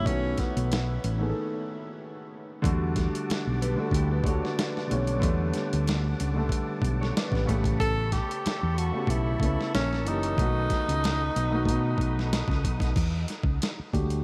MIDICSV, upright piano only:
0, 0, Header, 1, 2, 480
1, 0, Start_track
1, 0, Tempo, 645161
1, 44, Time_signature, 4, 2, 24, 8
1, 10594, End_track
2, 0, Start_track
2, 0, Title_t, "Upright piano"
2, 0, Program_c, 0, 0
2, 0, Control_c, 0, 64, 127
2, 25, Note_on_c, 0, 51, 87
2, 38, Note_on_c, 0, 57, 82
2, 50, Note_on_c, 0, 59, 79
2, 54, Control_c, 0, 64, 0
2, 63, Note_on_c, 0, 66, 91
2, 191, Control_c, 0, 64, 127
2, 744, Note_off_c, 0, 51, 0
2, 751, Note_off_c, 0, 57, 0
2, 757, Note_off_c, 0, 59, 0
2, 763, Note_off_c, 0, 66, 0
2, 874, Note_on_c, 0, 51, 87
2, 888, Note_on_c, 0, 57, 75
2, 900, Note_on_c, 0, 59, 82
2, 912, Note_on_c, 0, 68, 73
2, 947, Note_off_c, 0, 68, 0
2, 960, Note_on_c, 0, 69, 84
2, 1688, Note_off_c, 0, 51, 0
2, 1695, Note_off_c, 0, 57, 0
2, 1701, Note_off_c, 0, 59, 0
2, 1731, Note_off_c, 0, 69, 0
2, 1950, Note_on_c, 0, 50, 112
2, 1961, Note_on_c, 0, 54, 77
2, 1974, Note_on_c, 0, 57, 95
2, 1975, Control_c, 0, 64, 0
2, 1985, Note_on_c, 0, 66, 112
2, 2012, Note_on_c, 0, 55, 94
2, 2014, Note_off_c, 0, 54, 0
2, 2105, Control_c, 0, 64, 127
2, 2667, Note_off_c, 0, 50, 0
2, 2679, Note_off_c, 0, 57, 0
2, 2685, Note_off_c, 0, 66, 0
2, 2698, Note_off_c, 0, 55, 0
2, 2791, Note_on_c, 0, 50, 88
2, 2805, Note_on_c, 0, 55, 77
2, 2817, Note_on_c, 0, 57, 77
2, 2829, Note_on_c, 0, 66, 88
2, 3101, Note_off_c, 0, 50, 0
2, 3108, Note_off_c, 0, 55, 0
2, 3114, Note_off_c, 0, 57, 0
2, 3120, Note_off_c, 0, 66, 0
2, 3148, Note_on_c, 0, 50, 85
2, 3160, Note_on_c, 0, 55, 79
2, 3171, Note_on_c, 0, 57, 73
2, 3184, Note_on_c, 0, 66, 92
2, 3566, Note_off_c, 0, 50, 0
2, 3572, Note_off_c, 0, 55, 0
2, 3578, Note_off_c, 0, 57, 0
2, 3584, Note_off_c, 0, 66, 0
2, 3626, Note_on_c, 0, 50, 80
2, 3638, Note_on_c, 0, 55, 72
2, 3649, Note_on_c, 0, 57, 70
2, 3661, Note_on_c, 0, 61, 88
2, 3840, Note_off_c, 0, 50, 0
2, 3846, Note_off_c, 0, 55, 0
2, 3852, Note_off_c, 0, 57, 0
2, 3858, Note_off_c, 0, 61, 0
2, 3866, Note_on_c, 0, 50, 106
2, 3879, Note_on_c, 0, 55, 97
2, 3891, Note_on_c, 0, 57, 101
2, 3902, Note_on_c, 0, 59, 106
2, 4585, Note_off_c, 0, 50, 0
2, 4591, Note_off_c, 0, 55, 0
2, 4597, Note_off_c, 0, 57, 0
2, 4603, Note_off_c, 0, 59, 0
2, 4716, Note_on_c, 0, 50, 89
2, 4727, Note_on_c, 0, 55, 77
2, 4740, Note_on_c, 0, 57, 82
2, 4751, Note_on_c, 0, 69, 87
2, 5529, Note_off_c, 0, 50, 0
2, 5534, Note_off_c, 0, 55, 0
2, 5540, Note_off_c, 0, 57, 0
2, 5546, Note_off_c, 0, 69, 0
2, 5548, Note_on_c, 0, 49, 97
2, 5561, Note_on_c, 0, 57, 90
2, 5573, Note_on_c, 0, 59, 78
2, 5575, Control_c, 0, 64, 0
2, 5586, Note_on_c, 0, 67, 100
2, 5690, Control_c, 0, 64, 127
2, 6373, Note_off_c, 0, 49, 0
2, 6379, Note_off_c, 0, 57, 0
2, 6385, Note_off_c, 0, 59, 0
2, 6392, Note_off_c, 0, 67, 0
2, 6637, Note_on_c, 0, 49, 70
2, 6649, Note_on_c, 0, 57, 65
2, 6663, Note_on_c, 0, 59, 63
2, 6675, Note_on_c, 0, 67, 79
2, 6944, Note_off_c, 0, 49, 0
2, 6950, Note_off_c, 0, 57, 0
2, 6957, Note_off_c, 0, 59, 0
2, 6963, Note_off_c, 0, 67, 0
2, 6988, Note_on_c, 0, 49, 71
2, 6999, Note_on_c, 0, 57, 65
2, 7014, Note_on_c, 0, 59, 66
2, 7024, Note_on_c, 0, 69, 79
2, 7236, Note_off_c, 0, 49, 0
2, 7242, Note_off_c, 0, 57, 0
2, 7249, Note_off_c, 0, 59, 0
2, 7254, Note_off_c, 0, 69, 0
2, 7254, Control_c, 0, 64, 0
2, 7388, Control_c, 0, 64, 127
2, 7471, Note_on_c, 0, 52, 70
2, 7484, Note_on_c, 0, 58, 64
2, 7495, Note_on_c, 0, 61, 58
2, 7507, Note_on_c, 0, 67, 71
2, 7683, Note_off_c, 0, 52, 0
2, 7689, Note_off_c, 0, 58, 0
2, 7695, Note_off_c, 0, 61, 0
2, 7701, Note_off_c, 0, 67, 0
2, 7710, Note_on_c, 0, 51, 85
2, 7721, Note_on_c, 0, 57, 81
2, 7733, Control_c, 0, 64, 0
2, 7733, Note_on_c, 0, 59, 85
2, 7747, Note_on_c, 0, 66, 95
2, 7879, Control_c, 0, 64, 127
2, 8427, Note_off_c, 0, 51, 0
2, 8433, Note_off_c, 0, 57, 0
2, 8439, Note_off_c, 0, 59, 0
2, 8445, Note_off_c, 0, 66, 0
2, 8556, Note_on_c, 0, 51, 81
2, 8568, Note_on_c, 0, 57, 77
2, 8580, Note_on_c, 0, 59, 78
2, 8592, Note_on_c, 0, 66, 93
2, 9368, Note_off_c, 0, 51, 0
2, 9375, Note_off_c, 0, 57, 0
2, 9380, Note_off_c, 0, 59, 0
2, 9387, Note_off_c, 0, 66, 0
2, 9654, Control_c, 0, 64, 0
2, 9789, Control_c, 0, 64, 127
2, 10363, Note_on_c, 0, 55, 49
2, 10367, Note_on_c, 0, 57, 48
2, 10367, Note_on_c, 0, 67, 73
2, 10368, Note_on_c, 0, 62, 45
2, 10373, Note_on_c, 0, 66, 56
2, 10589, Note_off_c, 0, 67, 0
2, 10594, Note_off_c, 0, 55, 0
2, 10594, Note_off_c, 0, 57, 0
2, 10594, Note_off_c, 0, 62, 0
2, 10594, Note_off_c, 0, 66, 0
2, 10594, End_track
0, 0, End_of_file